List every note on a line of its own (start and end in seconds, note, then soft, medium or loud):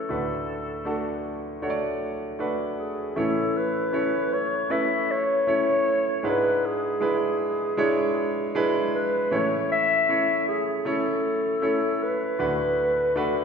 0.00 0.09 A3 medium
0.00 0.11 C#4 medium
0.00 0.11 E4 medium
0.00 1.26 A4 medium
0.00 0.10 C#5 medium
0.09 3.13 D2 soft
0.09 3.13 A2 soft
0.09 0.82 A3 medium
0.09 0.82 D4 medium
0.09 0.82 F#4 soft
0.09 0.83 B4 medium
0.85 1.58 A3 medium
0.85 1.59 D4 medium
0.85 1.59 F#4 medium
0.85 1.59 A4 medium
1.62 2.35 A3 medium
1.62 2.36 D4 medium
1.62 2.36 F#4 medium
1.62 1.69 C#5 medium
1.70 2.39 D5 medium
2.39 3.12 A3 medium
2.39 3.13 D4 medium
2.39 3.13 F#4 medium
2.39 3.13 B4 medium
2.79 3.19 G#4 medium
3.16 6.20 A2 medium
3.16 6.20 E3 medium
3.16 3.89 A3 medium
3.16 3.90 C#4 medium
3.16 3.90 E4 medium
3.16 3.59 A4 medium
3.16 3.90 C#5 medium
3.57 4.35 B4 loud
3.93 4.66 A3 medium
3.93 4.66 C#4 medium
3.93 4.67 E4 medium
3.93 4.67 C#5 medium
4.33 4.73 C#5 medium
4.70 5.43 A3 medium
4.70 5.43 C#4 medium
4.70 5.43 E4 medium
4.70 5.44 B4 medium
4.70 5.12 E5 loud
5.11 6.20 C#5 loud
5.47 6.20 A3 medium
5.47 6.20 C#4 medium
5.47 6.21 E4 medium
5.47 6.21 C#5 medium
6.20 6.97 G#3 medium
6.20 6.29 C#5 medium
6.24 9.28 G#2 medium
6.24 6.97 D4 medium
6.24 6.97 E4 medium
6.24 6.97 B4 medium
6.24 6.67 B4 medium
6.65 8.68 G#4 medium
7.01 7.74 G#3 medium
7.01 7.74 D4 medium
7.01 7.74 E4 medium
7.01 7.75 B4 medium
7.77 8.51 G#3 medium
7.77 8.51 D4 medium
7.77 8.51 E4 medium
7.77 8.51 C#5 medium
8.55 9.28 G#3 medium
8.55 9.28 D4 medium
8.55 9.28 E4 medium
8.55 9.29 B4 medium
8.95 9.30 B4 medium
9.31 12.36 A2 medium
9.31 12.36 E3 medium
9.31 10.05 A3 medium
9.31 10.05 C#4 medium
9.31 10.05 E4 medium
9.31 10.05 C#5 medium
9.31 9.69 C#5 medium
9.71 10.44 E5 loud
10.09 10.82 A3 medium
10.09 10.82 C#4 medium
10.09 10.82 E4 medium
10.09 10.83 C#5 medium
10.48 10.88 G#4 medium
10.85 11.59 A3 medium
10.85 11.59 C#4 medium
10.85 11.59 E4 medium
10.85 12.04 A4 medium
10.85 11.59 C#5 medium
11.62 12.35 A3 medium
11.62 12.35 C#4 medium
11.62 12.36 E4 medium
11.62 12.36 C#5 medium
12.03 13.44 B4 medium
12.39 13.44 D2 medium
12.39 13.44 A2 medium
12.39 13.12 A3 medium
12.39 13.12 D4 medium
12.39 13.13 F#4 medium
12.39 13.13 B4 medium
13.16 13.44 A3 medium
13.16 13.44 D4 medium
13.16 13.44 F#4 medium
13.16 13.44 B4 medium